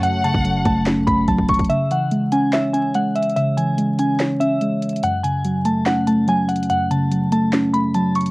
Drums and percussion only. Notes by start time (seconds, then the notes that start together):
0.03 closed hi-hat
0.24 closed hi-hat
0.34 kick
0.45 closed hi-hat
0.65 kick, closed hi-hat
0.86 snare, clap, closed hi-hat
1.07 kick, closed hi-hat
1.28 kick, closed hi-hat
1.38 kick
1.48 kick, closed hi-hat, open hi-hat
1.54 closed hi-hat
1.59 kick, closed hi-hat
1.64 closed hi-hat
1.70 closed hi-hat
1.91 closed hi-hat
2.11 closed hi-hat
2.32 closed hi-hat
2.53 snare, clap, closed hi-hat
2.74 closed hi-hat
2.94 closed hi-hat
3.15 closed hi-hat
3.22 closed hi-hat
3.29 closed hi-hat
3.36 closed hi-hat
3.57 closed hi-hat
3.78 closed hi-hat
3.99 closed hi-hat
4.20 snare, clap, closed hi-hat
4.41 closed hi-hat
4.61 closed hi-hat
4.82 closed hi-hat
4.89 closed hi-hat
4.96 closed hi-hat
5.03 closed hi-hat
5.24 closed hi-hat
5.45 closed hi-hat
5.65 closed hi-hat
5.86 snare, clap, closed hi-hat
6.07 closed hi-hat
6.28 closed hi-hat
6.49 closed hi-hat
6.56 closed hi-hat
6.63 closed hi-hat
6.70 closed hi-hat
6.91 closed hi-hat
7.12 closed hi-hat
7.32 closed hi-hat
7.53 snare, clap, closed hi-hat
7.74 closed hi-hat
7.94 closed hi-hat
8.15 closed hi-hat, open hi-hat
8.21 closed hi-hat
8.26 closed hi-hat